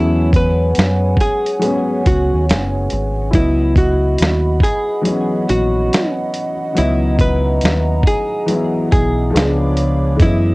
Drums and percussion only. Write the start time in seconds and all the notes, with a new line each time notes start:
0.33 kick, closed hi-hat
0.75 closed hi-hat
0.79 snare
1.17 kick, closed hi-hat
1.46 closed hi-hat
1.62 closed hi-hat
2.06 kick, closed hi-hat
2.49 snare, closed hi-hat
2.90 closed hi-hat
3.33 kick, closed hi-hat
3.76 kick, closed hi-hat
4.18 closed hi-hat
4.22 snare
4.60 kick
4.64 closed hi-hat
5.05 closed hi-hat
5.49 closed hi-hat
5.93 snare, closed hi-hat
6.34 closed hi-hat
6.77 closed hi-hat
7.19 kick, closed hi-hat
7.61 closed hi-hat
7.65 snare
8.03 kick, closed hi-hat
8.48 closed hi-hat
8.92 kick, closed hi-hat
9.36 snare, closed hi-hat
9.77 closed hi-hat
10.20 kick, closed hi-hat